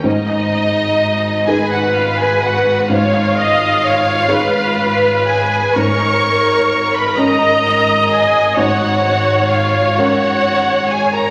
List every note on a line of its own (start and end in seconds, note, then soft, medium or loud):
0.04 5.72 G#1 medium
0.04 1.43 G#2 medium
0.04 5.72 G#2 medium
0.04 1.44 D#4 medium
0.04 1.45 D#5 medium
1.47 2.86 D#4 soft
1.47 2.86 G#4 soft
1.47 1.72 G#4 medium
1.47 2.86 B4 soft
1.47 2.87 B4 medium
1.47 1.71 G#5 medium
1.71 1.96 F#4 medium
1.71 1.95 F#5 medium
1.94 2.20 F4 medium
1.94 2.19 F5 medium
2.19 2.43 G#4 medium
2.19 2.43 G#5 medium
2.42 2.91 F#4 medium
2.42 2.90 F#5 medium
2.90 4.25 G#2 medium
2.90 5.23 F4 medium
2.90 3.36 C#5 medium
2.90 5.26 F5 medium
3.38 3.82 D#5 medium
3.84 4.30 C#5 medium
4.28 5.72 D#4 soft
4.28 5.72 G#4 soft
4.28 5.77 B4 medium
4.28 5.72 C#5 soft
5.26 5.76 G#4 medium
5.26 5.76 G#5 medium
5.75 11.30 G#1 medium
5.75 7.14 G#2 soft
5.75 11.30 G#2 medium
5.75 7.18 A#4 medium
5.75 6.92 C#5 medium
5.75 6.94 C#6 medium
6.95 7.18 B4 medium
6.95 7.18 B5 medium
7.17 8.52 C#4 soft
7.17 8.53 A#4 soft
7.17 8.11 A#4 medium
7.17 8.53 C#5 soft
7.17 8.54 D#5 medium
7.17 8.11 A#5 medium
8.10 8.56 G#4 medium
8.10 8.57 G#5 medium
8.57 9.93 G#2 medium
8.57 9.48 F#4 medium
8.57 11.30 C#5 medium
8.57 9.49 F#5 medium
9.49 9.97 F4 medium
9.49 9.96 F5 medium
9.97 11.30 C#4 soft
9.97 10.90 F#4 medium
9.97 11.30 A#4 soft
9.97 11.30 C#5 soft
9.97 10.90 F#5 medium
10.89 11.12 G#4 medium
10.89 11.13 G#5 medium
11.12 11.30 A#4 medium
11.12 11.30 A#5 medium